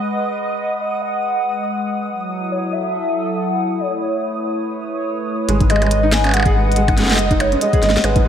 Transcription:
Already playing: G#3 B4 D#5 F#5 D#6
0.80 D#5
1.02 F#5
2.08 F#3
2.26 E4
2.51 C#5
2.67 A4
2.72 E5
3.36 F#5
3.78 A3 C#5
4.18 C#5
4.26 B4
5.49 G#1 G#3 D#6, closed hi-hat
5.60 G#2 D#5, kick, closed hi-hat
5.70 G#3 D#5, closed hi-hat, percussion blips
5.76 percussion blips
5.82 G#3, closed hi-hat, percussion blips
5.86 percussion blips
5.91 G#3 F#5, closed hi-hat
6.03 D#4
6.12 D#4 G#5, snare, closed hi-hat
6.24 C#4, closed hi-hat, percussion blips
6.27 percussion blips
6.29 percussion blips
6.31 closed hi-hat, percussion blips
6.34 G#3 F#5, percussion blips
6.37 percussion blips
6.40 percussion blips
6.43 G#4, kick, closed hi-hat, percussion blips
6.55 G#3
6.67 G#3
6.72 closed hi-hat
6.76 G#3, closed hi-hat
6.88 G#2, kick, closed hi-hat, percussion blips
6.98 F#1 G#3, snare, closed hi-hat
7.01 snare
7.04 snare
7.06 snare
7.09 G#3, snare, closed hi-hat
7.12 snare, closed hi-hat
7.14 snare, closed hi-hat
7.16 snare, closed hi-hat
7.19 G#3 D#5, closed hi-hat
7.31 D#4, kick, closed hi-hat
7.40 D#4 C#5, closed hi-hat, percussion blips
7.52 C#4, closed hi-hat
7.61 G#3 D#5, closed hi-hat
7.73 G#4, kick, closed hi-hat
7.83 G#1 G#3 D#5, snare, closed hi-hat
7.90 snare
7.95 G#3, snare
8.04 G#1 G#3 B4, closed hi-hat, percussion blips
8.16 G#2, kick, closed hi-hat

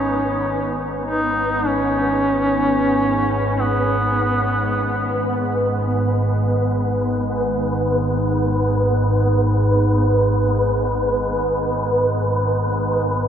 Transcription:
Already playing: G#1 G#2 B3 C#4 B4
1.02 D#4
1.67 C#4
3.60 B3

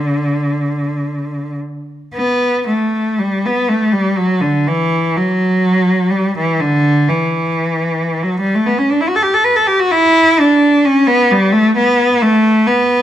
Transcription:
Already playing: D3
2.15 B3
2.68 A3
3.19 G3
3.46 B3
3.69 A3
3.92 G3
4.18 F#3
4.41 D3
4.67 E3
5.17 F#3
6.10 G3
6.38 E3
6.61 D3
7.09 E3
8.23 F#3
8.40 G3
8.55 A3
8.66 B3
8.78 C#4
8.90 D4
9.01 E4
9.09 F#4
9.16 A4
9.23 G4
9.34 A4
9.44 B4
9.56 A4
9.67 G4
9.79 F#4
9.92 E4
10.40 D4
10.85 C#4
11.07 B3
11.31 G3
11.53 A3
11.76 B3
12.22 A3
12.67 B3

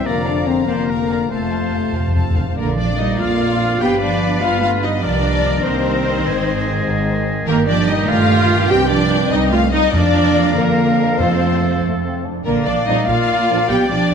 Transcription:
0.05 F1 F2 D3 F3 A#3 A#4 D5 F5 A#5
0.24 D4 D5 F5 A#5
0.47 C4 A#4 C5 F5 A#5
0.66 F1 F2 D3 F3 A#3 A#4 C5 D5 F5 A#5
0.89 A#4 F5 A#5
1.09 A#4 D5 F5 A#5
1.30 F1 F2 C3 F3 A3 A4 C5 F5 A5
1.46 F2
1.51 C5 F5 A5
1.61 F2
1.69 F2 A4 F5 A5
1.78 F2
1.85 F2
1.93 F1 F2 C5 F5 A5
2.00 F2
2.07 F2
2.14 F2 A4 F5 A5
2.23 F2
2.30 F2
2.37 F2 C5 F5 A5
2.44 F2
2.57 A#1 F2 D3 F3 A#3 D4 A#4 D5 F5
2.77 F3 D4 D5
2.98 G3 D#4 D#5
3.18 A#1 A#3 F4 F5
3.80 G1 G2 B3 G4 B4 G5
4.00 F3 D4 D5
4.41 G1 B3 F4 F5
4.61 A3 F4 F5
4.82 G3 D#4 D#5
5.02 C2 D#3 F3 A#3 D4 A#4 D5 D#5
5.64 C2 D#3 C4 C5
6.25 G#1 G#2 G#3 G#4
6.86 G#1
7.47 G1 G2 A#2 D#3 A#3 G4 A#4
7.68 F3 D4 D5
7.88 G3 D#4 D#5
8.09 G1 A3 F4 F5
8.69 C2 G3 C4 G4 G5
8.90 F3 D4 D5
9.31 C2 G3 D#4 D#5
9.52 A3 F4 F5
9.72 G3 D#4 D#5
9.93 F2 F3 A#3 D4 F4 A#4 D5 F5
10.56 F2 D3 A#3 A#4
11.20 F2 F3 A3 C4 A4 C5
11.83 F2 A3
12.04 C4
12.26 D4
12.45 A#1 D3 A#3 A#4 D5 F5
12.66 A#1 F3 D4 D5
12.86 A#1 F2 F3 G3 A#3 D4 D#4 D#5
13.07 A#1 A#3 F4 F5
13.29 A#1
13.49 A#1 F2 F3 A#3 D4
13.69 B1 B3 G4 G5
13.89 B1 F3 D4 D5
14.11 B1 B2 G3

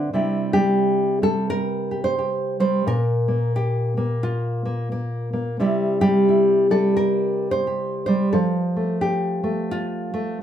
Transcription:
Already playing: D3 C4
0.13 C3 G3 E4 G4
0.53 G3 G4
1.22 G3 A4
1.50 A#4
1.91 G4
2.04 C5
2.19 G4
2.60 G3 C5
2.86 A#2 A#4
3.28 A#3
3.56 G4
3.97 A#3
4.23 F4
4.65 A#3
4.92 A#3
5.33 A#3
5.59 C3 G3 E4 G4
6.01 G3 G4
6.29 E4
6.71 G3 A4
6.97 A#4
7.51 C5
7.67 G4
8.06 G3 C5
8.33 F3 A4
8.76 A3
9.01 G4
9.44 A3
9.71 F4
10.14 A3

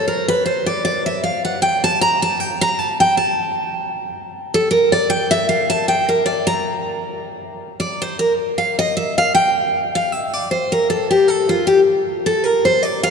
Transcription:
0.08 A#4
0.28 B4
0.46 C5
0.66 D5
0.85 D5
1.06 E5
1.24 F5
1.45 F#5
1.62 G5
1.84 A5
2.01 A#5
2.22 A5
2.40 G5
2.61 A#5
2.79 A5
3.00 G5
3.17 A5
4.54 A4
4.71 A#4
4.92 D5
5.10 G5
5.31 E5
5.49 F5
5.70 A5
5.88 G5
6.09 A#4
6.26 D5
6.47 A#5
7.80 D5
8.02 C5
8.19 A#4
8.58 F5
8.79 D#5
8.97 E5
9.18 F5
9.35 G5
9.95 F5
10.12 E5
10.33 D5
10.51 C5
10.72 A#4
10.90 A4
11.11 G4
11.28 A4
11.49 F4
11.67 G4
12.26 A4
12.44 A#4
12.65 C5
12.83 D5
13.03 F5

